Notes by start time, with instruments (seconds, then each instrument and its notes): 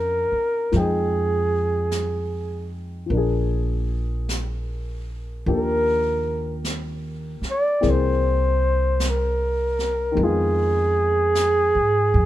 Already playing: upright bass F2, grand piano F3 C4 C#4 D#4 F4 A#4 C5, flugelhorn A#4
0.32 muted upright bass stroke
0.72 upright bass F2, grand piano F3 G#3 D#4, brush sweep, snare
0.76 flugelhorn G#4, grand piano G5
1.91 brush sweep, snare, hi-hat pedal
3.06 upright bass A#1, grand piano F3, brush sweep
3.10 grand piano A#3 D4
3.17 grand piano G#4
4.29 brush sweep, snare, hi-hat pedal
5.46 upright bass D#2, grand piano F3 A#3 D4 G4, flugelhorn A#4, brush sweep
6.65 brush sweep, snare, hi-hat pedal
7.42 muted upright bass stroke, snare
7.50 flugelhorn D5
7.81 upright bass C2, grand piano E3 A#3 C4 G#4, brush sweep, snare
7.90 flugelhorn C5
9.00 brush sweep, snare, hi-hat pedal
9.09 flugelhorn A#4
9.79 snare
10.12 grand piano D#3 G#3
10.17 upright bass F2, grand piano B3, brush sweep
10.23 grand piano F4, flugelhorn G#4
11.35 brush sweep, snare, hi-hat pedal
11.75 upright bass G#2
12.14 upright bass F2